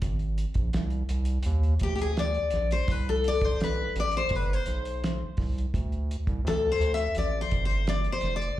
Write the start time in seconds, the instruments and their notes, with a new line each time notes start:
0.02 analog synth bass G#1, kick, closed hi-hat
0.19 closed hi-hat
0.38 closed hi-hat
0.54 analog synth bass A#1, kick, closed hi-hat
0.73 analog synth bass C2, snare, closed hi-hat
0.90 closed hi-hat
1.09 analog synth bass C2, closed hi-hat
1.25 closed hi-hat
1.43 analog synth bass D#2, closed hi-hat
1.63 closed hi-hat
1.79 analog synth bass D2, steel-string acoustic guitar G4, kick, closed hi-hat
1.95 steel-string acoustic guitar G4, closed hi-hat
2.01 steel-string acoustic guitar G#4
2.17 steel-string acoustic guitar D5, snare, closed hi-hat
2.34 closed hi-hat
2.50 analog synth bass A#1, snare, closed hi-hat
2.71 steel-string acoustic guitar C5, closed hi-hat
2.88 analog synth bass C2, steel-string acoustic guitar B4, kick, closed hi-hat
3.09 steel-string acoustic guitar A4
3.24 steel-string acoustic guitar D5, closed hi-hat
3.41 analog synth bass B1, steel-string acoustic guitar C5, kick, closed hi-hat
3.60 analog synth bass B1, steel-string acoustic guitar B4, snare, closed hi-hat
3.96 analog synth bass A1, closed hi-hat
4.00 steel-string acoustic guitar D5
4.11 closed hi-hat
4.17 steel-string acoustic guitar C5
4.29 analog synth bass G1, kick, closed hi-hat
4.35 steel-string acoustic guitar B4
4.53 steel-string acoustic guitar C5
4.66 analog synth bass B1, closed hi-hat
4.85 closed hi-hat
5.04 snare, closed hi-hat
5.37 analog synth bass C2, kick, snare, open hi-hat
5.58 closed hi-hat
5.74 analog synth bass D2, kick, closed hi-hat
5.92 closed hi-hat
6.11 closed hi-hat
6.27 analog synth bass C2, kick, closed hi-hat
6.44 analog synth bass D2, steel-string acoustic guitar A4, snare, closed hi-hat
6.72 steel-string acoustic guitar C5
6.80 analog synth bass D2, closed hi-hat
6.94 steel-string acoustic guitar E5, closed hi-hat
7.15 analog synth bass A1, steel-string acoustic guitar D5, closed hi-hat
7.41 steel-string acoustic guitar C5
7.51 analog synth bass G1, kick, closed hi-hat
7.65 steel-string acoustic guitar C5
7.69 closed hi-hat
7.87 steel-string acoustic guitar D5, snare, closed hi-hat
8.04 closed hi-hat
8.12 steel-string acoustic guitar C5
8.21 analog synth bass F1, snare, closed hi-hat
8.36 steel-string acoustic guitar D5
8.42 closed hi-hat